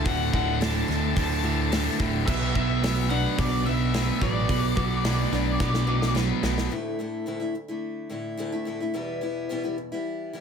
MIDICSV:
0, 0, Header, 1, 7, 480
1, 0, Start_track
1, 0, Key_signature, 2, "major"
1, 0, Tempo, 556586
1, 46, Time_signature, 4, 2, 24, 8
1, 8972, End_track
2, 0, Start_track
2, 0, Title_t, "Lead electric guitar"
2, 0, Program_c, 0, 29
2, 60, Note_on_c, 0, 78, 92
2, 283, Note_off_c, 0, 78, 0
2, 294, Note_on_c, 0, 78, 76
2, 519, Note_off_c, 0, 78, 0
2, 522, Note_on_c, 0, 81, 87
2, 1003, Note_off_c, 0, 81, 0
2, 1013, Note_on_c, 0, 81, 78
2, 1691, Note_off_c, 0, 81, 0
2, 1952, Note_on_c, 0, 76, 100
2, 2174, Note_off_c, 0, 76, 0
2, 2184, Note_on_c, 0, 76, 92
2, 2668, Note_on_c, 0, 78, 97
2, 2684, Note_off_c, 0, 76, 0
2, 2894, Note_off_c, 0, 78, 0
2, 2923, Note_on_c, 0, 74, 84
2, 3149, Note_off_c, 0, 74, 0
2, 3153, Note_on_c, 0, 76, 93
2, 3640, Note_off_c, 0, 76, 0
2, 3644, Note_on_c, 0, 74, 79
2, 5282, Note_off_c, 0, 74, 0
2, 8972, End_track
3, 0, Start_track
3, 0, Title_t, "Steel-string acoustic guitar"
3, 0, Program_c, 1, 25
3, 0, Note_on_c, 1, 45, 74
3, 0, Note_on_c, 1, 57, 67
3, 0, Note_on_c, 1, 66, 74
3, 44, Note_on_c, 1, 38, 69
3, 290, Note_off_c, 1, 45, 0
3, 525, Note_on_c, 1, 45, 69
3, 761, Note_on_c, 1, 50, 70
3, 991, Note_off_c, 1, 45, 0
3, 1001, Note_on_c, 1, 45, 68
3, 1003, Note_off_c, 1, 57, 0
3, 1240, Note_off_c, 1, 38, 0
3, 1240, Note_on_c, 1, 57, 64
3, 1480, Note_off_c, 1, 66, 0
3, 1483, Note_on_c, 1, 66, 74
3, 1707, Note_off_c, 1, 57, 0
3, 1717, Note_on_c, 1, 57, 66
3, 1957, Note_off_c, 1, 57, 0
3, 1958, Note_off_c, 1, 45, 0
3, 1958, Note_off_c, 1, 50, 0
3, 1968, Note_on_c, 1, 47, 71
3, 2445, Note_on_c, 1, 59, 71
3, 2676, Note_on_c, 1, 62, 67
3, 2910, Note_off_c, 1, 59, 0
3, 2920, Note_on_c, 1, 59, 67
3, 3158, Note_off_c, 1, 66, 0
3, 3158, Note_on_c, 1, 66, 66
3, 3159, Note_off_c, 1, 47, 0
3, 3408, Note_on_c, 1, 71, 74
3, 3632, Note_off_c, 1, 66, 0
3, 3643, Note_on_c, 1, 66, 62
3, 3877, Note_on_c, 1, 47, 68
3, 4114, Note_off_c, 1, 59, 0
3, 4353, Note_on_c, 1, 59, 66
3, 4591, Note_off_c, 1, 62, 0
3, 4595, Note_on_c, 1, 62, 66
3, 4598, Note_off_c, 1, 71, 0
3, 4820, Note_off_c, 1, 59, 0
3, 4830, Note_on_c, 1, 59, 72
3, 4836, Note_off_c, 1, 66, 0
3, 5062, Note_on_c, 1, 66, 68
3, 5073, Note_off_c, 1, 47, 0
3, 5301, Note_on_c, 1, 71, 74
3, 5534, Note_off_c, 1, 66, 0
3, 5545, Note_on_c, 1, 66, 66
3, 5779, Note_on_c, 1, 38, 62
3, 5785, Note_on_c, 1, 45, 65
3, 5786, Note_off_c, 1, 71, 0
3, 5787, Note_off_c, 1, 59, 0
3, 5788, Note_off_c, 1, 66, 0
3, 5791, Note_off_c, 1, 62, 0
3, 5791, Note_on_c, 1, 50, 78
3, 5794, Note_on_c, 1, 57, 81
3, 5802, Note_on_c, 1, 64, 79
3, 6015, Note_off_c, 1, 45, 0
3, 6024, Note_off_c, 1, 50, 0
3, 6026, Note_on_c, 1, 45, 56
3, 6030, Note_off_c, 1, 57, 0
3, 6034, Note_on_c, 1, 50, 61
3, 6040, Note_on_c, 1, 57, 61
3, 6042, Note_off_c, 1, 64, 0
3, 6046, Note_on_c, 1, 64, 68
3, 6250, Note_off_c, 1, 38, 0
3, 6256, Note_off_c, 1, 45, 0
3, 6260, Note_off_c, 1, 50, 0
3, 6261, Note_on_c, 1, 38, 68
3, 6266, Note_on_c, 1, 45, 69
3, 6267, Note_off_c, 1, 57, 0
3, 6270, Note_on_c, 1, 50, 73
3, 6274, Note_off_c, 1, 64, 0
3, 6278, Note_on_c, 1, 57, 71
3, 6278, Note_on_c, 1, 64, 71
3, 6375, Note_off_c, 1, 64, 0
3, 6379, Note_on_c, 1, 64, 57
3, 6382, Note_off_c, 1, 57, 0
3, 6391, Note_off_c, 1, 50, 0
3, 6392, Note_on_c, 1, 57, 50
3, 6401, Note_on_c, 1, 50, 43
3, 6500, Note_off_c, 1, 45, 0
3, 6501, Note_off_c, 1, 50, 0
3, 6503, Note_off_c, 1, 57, 0
3, 6513, Note_off_c, 1, 64, 0
3, 6626, Note_on_c, 1, 64, 58
3, 6627, Note_off_c, 1, 38, 0
3, 6635, Note_on_c, 1, 57, 54
3, 6647, Note_on_c, 1, 50, 47
3, 6978, Note_off_c, 1, 50, 0
3, 6981, Note_on_c, 1, 45, 59
3, 6983, Note_off_c, 1, 57, 0
3, 6989, Note_on_c, 1, 50, 57
3, 6994, Note_on_c, 1, 57, 60
3, 6999, Note_off_c, 1, 64, 0
3, 7002, Note_on_c, 1, 64, 67
3, 7220, Note_off_c, 1, 45, 0
3, 7222, Note_on_c, 1, 38, 75
3, 7225, Note_off_c, 1, 50, 0
3, 7230, Note_on_c, 1, 45, 70
3, 7231, Note_off_c, 1, 57, 0
3, 7236, Note_on_c, 1, 50, 75
3, 7241, Note_on_c, 1, 57, 73
3, 7242, Note_off_c, 1, 64, 0
3, 7246, Note_on_c, 1, 64, 78
3, 7347, Note_off_c, 1, 64, 0
3, 7349, Note_off_c, 1, 57, 0
3, 7350, Note_on_c, 1, 64, 56
3, 7359, Note_on_c, 1, 57, 51
3, 7360, Note_off_c, 1, 50, 0
3, 7371, Note_on_c, 1, 50, 43
3, 7451, Note_off_c, 1, 45, 0
3, 7462, Note_on_c, 1, 45, 58
3, 7463, Note_off_c, 1, 50, 0
3, 7467, Note_off_c, 1, 57, 0
3, 7473, Note_on_c, 1, 50, 56
3, 7477, Note_on_c, 1, 57, 61
3, 7482, Note_off_c, 1, 64, 0
3, 7486, Note_on_c, 1, 64, 67
3, 7589, Note_off_c, 1, 64, 0
3, 7591, Note_off_c, 1, 38, 0
3, 7593, Note_on_c, 1, 64, 60
3, 7595, Note_off_c, 1, 57, 0
3, 7603, Note_off_c, 1, 50, 0
3, 7606, Note_on_c, 1, 57, 49
3, 7613, Note_on_c, 1, 50, 52
3, 7696, Note_off_c, 1, 45, 0
3, 7706, Note_on_c, 1, 40, 74
3, 7708, Note_off_c, 1, 57, 0
3, 7711, Note_off_c, 1, 50, 0
3, 7711, Note_on_c, 1, 47, 70
3, 7715, Note_on_c, 1, 52, 73
3, 7718, Note_on_c, 1, 55, 68
3, 7721, Note_off_c, 1, 64, 0
3, 7723, Note_on_c, 1, 59, 71
3, 7725, Note_on_c, 1, 64, 72
3, 7940, Note_off_c, 1, 52, 0
3, 7943, Note_on_c, 1, 52, 55
3, 7944, Note_off_c, 1, 55, 0
3, 7948, Note_on_c, 1, 55, 59
3, 7953, Note_off_c, 1, 59, 0
3, 7956, Note_on_c, 1, 59, 60
3, 7957, Note_off_c, 1, 64, 0
3, 7960, Note_on_c, 1, 64, 65
3, 8176, Note_off_c, 1, 40, 0
3, 8183, Note_off_c, 1, 47, 0
3, 8187, Note_on_c, 1, 40, 71
3, 8193, Note_on_c, 1, 47, 71
3, 8194, Note_off_c, 1, 52, 0
3, 8198, Note_off_c, 1, 55, 0
3, 8198, Note_on_c, 1, 52, 70
3, 8201, Note_on_c, 1, 55, 76
3, 8203, Note_off_c, 1, 59, 0
3, 8204, Note_off_c, 1, 64, 0
3, 8207, Note_on_c, 1, 59, 78
3, 8208, Note_on_c, 1, 64, 79
3, 8306, Note_off_c, 1, 64, 0
3, 8307, Note_off_c, 1, 59, 0
3, 8309, Note_on_c, 1, 64, 63
3, 8318, Note_on_c, 1, 59, 57
3, 8319, Note_off_c, 1, 55, 0
3, 8323, Note_on_c, 1, 55, 54
3, 8329, Note_off_c, 1, 52, 0
3, 8332, Note_on_c, 1, 52, 47
3, 8424, Note_off_c, 1, 59, 0
3, 8428, Note_off_c, 1, 52, 0
3, 8430, Note_off_c, 1, 64, 0
3, 8431, Note_off_c, 1, 55, 0
3, 8553, Note_on_c, 1, 64, 56
3, 8556, Note_off_c, 1, 40, 0
3, 8559, Note_off_c, 1, 47, 0
3, 8561, Note_on_c, 1, 59, 57
3, 8571, Note_on_c, 1, 55, 49
3, 8573, Note_on_c, 1, 52, 43
3, 8908, Note_off_c, 1, 52, 0
3, 8912, Note_on_c, 1, 52, 57
3, 8914, Note_off_c, 1, 59, 0
3, 8917, Note_off_c, 1, 55, 0
3, 8920, Note_on_c, 1, 55, 59
3, 8925, Note_on_c, 1, 59, 62
3, 8928, Note_off_c, 1, 64, 0
3, 8931, Note_on_c, 1, 64, 62
3, 8972, Note_off_c, 1, 52, 0
3, 8972, Note_off_c, 1, 55, 0
3, 8972, Note_off_c, 1, 59, 0
3, 8972, Note_off_c, 1, 64, 0
3, 8972, End_track
4, 0, Start_track
4, 0, Title_t, "Distorted electric guitar"
4, 0, Program_c, 2, 30
4, 37, Note_on_c, 2, 38, 85
4, 44, Note_on_c, 2, 45, 92
4, 49, Note_on_c, 2, 50, 103
4, 273, Note_off_c, 2, 38, 0
4, 278, Note_off_c, 2, 45, 0
4, 281, Note_off_c, 2, 50, 0
4, 283, Note_on_c, 2, 38, 74
4, 288, Note_on_c, 2, 45, 86
4, 291, Note_on_c, 2, 50, 88
4, 508, Note_off_c, 2, 38, 0
4, 514, Note_off_c, 2, 45, 0
4, 518, Note_on_c, 2, 38, 105
4, 522, Note_off_c, 2, 50, 0
4, 524, Note_on_c, 2, 45, 104
4, 532, Note_on_c, 2, 50, 110
4, 747, Note_off_c, 2, 38, 0
4, 758, Note_on_c, 2, 38, 83
4, 759, Note_off_c, 2, 45, 0
4, 763, Note_off_c, 2, 50, 0
4, 769, Note_on_c, 2, 45, 86
4, 774, Note_on_c, 2, 50, 89
4, 987, Note_off_c, 2, 38, 0
4, 990, Note_off_c, 2, 45, 0
4, 998, Note_off_c, 2, 50, 0
4, 998, Note_on_c, 2, 38, 74
4, 1001, Note_on_c, 2, 45, 82
4, 1009, Note_on_c, 2, 50, 90
4, 1221, Note_off_c, 2, 38, 0
4, 1227, Note_off_c, 2, 45, 0
4, 1231, Note_on_c, 2, 38, 83
4, 1234, Note_off_c, 2, 50, 0
4, 1237, Note_on_c, 2, 45, 89
4, 1244, Note_on_c, 2, 50, 92
4, 1458, Note_off_c, 2, 38, 0
4, 1466, Note_off_c, 2, 45, 0
4, 1468, Note_on_c, 2, 38, 95
4, 1474, Note_off_c, 2, 50, 0
4, 1476, Note_on_c, 2, 45, 100
4, 1484, Note_on_c, 2, 50, 107
4, 1704, Note_off_c, 2, 38, 0
4, 1709, Note_off_c, 2, 45, 0
4, 1714, Note_off_c, 2, 50, 0
4, 1714, Note_on_c, 2, 38, 81
4, 1719, Note_on_c, 2, 45, 82
4, 1724, Note_on_c, 2, 50, 95
4, 1942, Note_off_c, 2, 38, 0
4, 1944, Note_off_c, 2, 45, 0
4, 1947, Note_off_c, 2, 50, 0
4, 1948, Note_on_c, 2, 47, 91
4, 1958, Note_on_c, 2, 54, 93
4, 1963, Note_on_c, 2, 59, 91
4, 2186, Note_off_c, 2, 47, 0
4, 2189, Note_on_c, 2, 47, 86
4, 2194, Note_off_c, 2, 54, 0
4, 2197, Note_on_c, 2, 54, 86
4, 2200, Note_off_c, 2, 59, 0
4, 2203, Note_on_c, 2, 59, 91
4, 2429, Note_off_c, 2, 47, 0
4, 2432, Note_on_c, 2, 47, 97
4, 2435, Note_off_c, 2, 54, 0
4, 2438, Note_on_c, 2, 54, 103
4, 2439, Note_off_c, 2, 59, 0
4, 2443, Note_on_c, 2, 59, 103
4, 2670, Note_off_c, 2, 47, 0
4, 2674, Note_on_c, 2, 47, 82
4, 2675, Note_off_c, 2, 54, 0
4, 2679, Note_on_c, 2, 54, 90
4, 2683, Note_off_c, 2, 59, 0
4, 2686, Note_on_c, 2, 59, 94
4, 2909, Note_off_c, 2, 47, 0
4, 2912, Note_off_c, 2, 54, 0
4, 2916, Note_off_c, 2, 59, 0
4, 2919, Note_on_c, 2, 47, 83
4, 2922, Note_on_c, 2, 54, 84
4, 2926, Note_on_c, 2, 59, 82
4, 3146, Note_off_c, 2, 47, 0
4, 3151, Note_off_c, 2, 54, 0
4, 3156, Note_on_c, 2, 47, 76
4, 3159, Note_off_c, 2, 59, 0
4, 3161, Note_on_c, 2, 54, 81
4, 3170, Note_on_c, 2, 59, 94
4, 3389, Note_off_c, 2, 47, 0
4, 3393, Note_off_c, 2, 54, 0
4, 3399, Note_on_c, 2, 47, 88
4, 3401, Note_off_c, 2, 59, 0
4, 3404, Note_on_c, 2, 54, 104
4, 3411, Note_on_c, 2, 59, 109
4, 3623, Note_off_c, 2, 47, 0
4, 3629, Note_off_c, 2, 54, 0
4, 3633, Note_on_c, 2, 47, 76
4, 3635, Note_off_c, 2, 59, 0
4, 3640, Note_on_c, 2, 54, 86
4, 3645, Note_on_c, 2, 59, 90
4, 3864, Note_off_c, 2, 47, 0
4, 3874, Note_on_c, 2, 47, 91
4, 3875, Note_off_c, 2, 54, 0
4, 3880, Note_off_c, 2, 59, 0
4, 3886, Note_on_c, 2, 54, 97
4, 3891, Note_on_c, 2, 59, 102
4, 4097, Note_off_c, 2, 47, 0
4, 4104, Note_off_c, 2, 54, 0
4, 4107, Note_on_c, 2, 47, 87
4, 4110, Note_off_c, 2, 59, 0
4, 4114, Note_on_c, 2, 54, 88
4, 4121, Note_on_c, 2, 59, 93
4, 4342, Note_off_c, 2, 47, 0
4, 4346, Note_off_c, 2, 54, 0
4, 4352, Note_on_c, 2, 47, 95
4, 4355, Note_off_c, 2, 59, 0
4, 4356, Note_on_c, 2, 54, 100
4, 4366, Note_on_c, 2, 59, 102
4, 4582, Note_off_c, 2, 47, 0
4, 4587, Note_off_c, 2, 54, 0
4, 4592, Note_off_c, 2, 59, 0
4, 4592, Note_on_c, 2, 47, 81
4, 4597, Note_on_c, 2, 54, 90
4, 4602, Note_on_c, 2, 59, 82
4, 4817, Note_off_c, 2, 47, 0
4, 4827, Note_off_c, 2, 54, 0
4, 4827, Note_on_c, 2, 47, 80
4, 4828, Note_off_c, 2, 59, 0
4, 4838, Note_on_c, 2, 54, 85
4, 4838, Note_on_c, 2, 59, 94
4, 5055, Note_off_c, 2, 47, 0
4, 5058, Note_off_c, 2, 54, 0
4, 5065, Note_off_c, 2, 59, 0
4, 5065, Note_on_c, 2, 47, 87
4, 5068, Note_on_c, 2, 54, 80
4, 5075, Note_on_c, 2, 59, 87
4, 5295, Note_off_c, 2, 47, 0
4, 5302, Note_off_c, 2, 54, 0
4, 5305, Note_on_c, 2, 47, 89
4, 5307, Note_off_c, 2, 59, 0
4, 5313, Note_on_c, 2, 54, 88
4, 5317, Note_on_c, 2, 59, 98
4, 5533, Note_off_c, 2, 47, 0
4, 5539, Note_off_c, 2, 54, 0
4, 5544, Note_on_c, 2, 47, 73
4, 5546, Note_off_c, 2, 59, 0
4, 5549, Note_on_c, 2, 54, 84
4, 5557, Note_on_c, 2, 59, 84
4, 5773, Note_off_c, 2, 47, 0
4, 5776, Note_off_c, 2, 54, 0
4, 5780, Note_off_c, 2, 59, 0
4, 8972, End_track
5, 0, Start_track
5, 0, Title_t, "Picked electric bass"
5, 0, Program_c, 3, 34
5, 50, Note_on_c, 3, 26, 87
5, 249, Note_off_c, 3, 26, 0
5, 289, Note_on_c, 3, 26, 98
5, 689, Note_off_c, 3, 26, 0
5, 765, Note_on_c, 3, 38, 85
5, 965, Note_off_c, 3, 38, 0
5, 1006, Note_on_c, 3, 38, 93
5, 1607, Note_off_c, 3, 38, 0
5, 1725, Note_on_c, 3, 26, 99
5, 1924, Note_off_c, 3, 26, 0
5, 1965, Note_on_c, 3, 35, 91
5, 2163, Note_off_c, 3, 35, 0
5, 2205, Note_on_c, 3, 35, 88
5, 2805, Note_off_c, 3, 35, 0
5, 2918, Note_on_c, 3, 35, 108
5, 3520, Note_off_c, 3, 35, 0
5, 3635, Note_on_c, 3, 33, 86
5, 3835, Note_off_c, 3, 33, 0
5, 3873, Note_on_c, 3, 35, 86
5, 4074, Note_off_c, 3, 35, 0
5, 4115, Note_on_c, 3, 35, 96
5, 4516, Note_off_c, 3, 35, 0
5, 4589, Note_on_c, 3, 35, 80
5, 4791, Note_off_c, 3, 35, 0
5, 4831, Note_on_c, 3, 35, 96
5, 5436, Note_off_c, 3, 35, 0
5, 5546, Note_on_c, 3, 35, 90
5, 5750, Note_off_c, 3, 35, 0
5, 8972, End_track
6, 0, Start_track
6, 0, Title_t, "Muted steel-string acoustic guitar strokes"
6, 6510, Note_on_c, 9, 29, 36
6, 6596, Note_off_c, 9, 29, 0
6, 8432, Note_on_c, 9, 29, 39
6, 8518, Note_off_c, 9, 29, 0
6, 8972, End_track
7, 0, Start_track
7, 0, Title_t, "Drums"
7, 49, Note_on_c, 9, 36, 104
7, 51, Note_on_c, 9, 46, 53
7, 135, Note_off_c, 9, 36, 0
7, 137, Note_off_c, 9, 46, 0
7, 289, Note_on_c, 9, 36, 89
7, 375, Note_off_c, 9, 36, 0
7, 531, Note_on_c, 9, 46, 59
7, 536, Note_on_c, 9, 38, 106
7, 617, Note_off_c, 9, 46, 0
7, 622, Note_off_c, 9, 38, 0
7, 778, Note_on_c, 9, 38, 32
7, 864, Note_off_c, 9, 38, 0
7, 1006, Note_on_c, 9, 36, 103
7, 1011, Note_on_c, 9, 46, 61
7, 1092, Note_off_c, 9, 36, 0
7, 1098, Note_off_c, 9, 46, 0
7, 1486, Note_on_c, 9, 46, 62
7, 1491, Note_on_c, 9, 38, 107
7, 1572, Note_off_c, 9, 46, 0
7, 1577, Note_off_c, 9, 38, 0
7, 1723, Note_on_c, 9, 36, 77
7, 1729, Note_on_c, 9, 38, 29
7, 1809, Note_off_c, 9, 36, 0
7, 1815, Note_off_c, 9, 38, 0
7, 1963, Note_on_c, 9, 36, 104
7, 1966, Note_on_c, 9, 49, 89
7, 2049, Note_off_c, 9, 36, 0
7, 2052, Note_off_c, 9, 49, 0
7, 2203, Note_on_c, 9, 36, 83
7, 2289, Note_off_c, 9, 36, 0
7, 2446, Note_on_c, 9, 46, 60
7, 2452, Note_on_c, 9, 38, 107
7, 2533, Note_off_c, 9, 46, 0
7, 2538, Note_off_c, 9, 38, 0
7, 2919, Note_on_c, 9, 46, 53
7, 2920, Note_on_c, 9, 36, 109
7, 3005, Note_off_c, 9, 46, 0
7, 3006, Note_off_c, 9, 36, 0
7, 3398, Note_on_c, 9, 46, 55
7, 3403, Note_on_c, 9, 38, 108
7, 3484, Note_off_c, 9, 46, 0
7, 3489, Note_off_c, 9, 38, 0
7, 3635, Note_on_c, 9, 36, 81
7, 3721, Note_off_c, 9, 36, 0
7, 3873, Note_on_c, 9, 46, 51
7, 3874, Note_on_c, 9, 36, 100
7, 3959, Note_off_c, 9, 46, 0
7, 3960, Note_off_c, 9, 36, 0
7, 4113, Note_on_c, 9, 36, 90
7, 4199, Note_off_c, 9, 36, 0
7, 4350, Note_on_c, 9, 46, 54
7, 4355, Note_on_c, 9, 38, 111
7, 4436, Note_off_c, 9, 46, 0
7, 4442, Note_off_c, 9, 38, 0
7, 4596, Note_on_c, 9, 38, 30
7, 4682, Note_off_c, 9, 38, 0
7, 4831, Note_on_c, 9, 36, 102
7, 4831, Note_on_c, 9, 38, 57
7, 4917, Note_off_c, 9, 36, 0
7, 4917, Note_off_c, 9, 38, 0
7, 4953, Note_on_c, 9, 38, 59
7, 5039, Note_off_c, 9, 38, 0
7, 5194, Note_on_c, 9, 38, 68
7, 5280, Note_off_c, 9, 38, 0
7, 5313, Note_on_c, 9, 38, 76
7, 5399, Note_off_c, 9, 38, 0
7, 5550, Note_on_c, 9, 38, 88
7, 5636, Note_off_c, 9, 38, 0
7, 5673, Note_on_c, 9, 38, 87
7, 5760, Note_off_c, 9, 38, 0
7, 8972, End_track
0, 0, End_of_file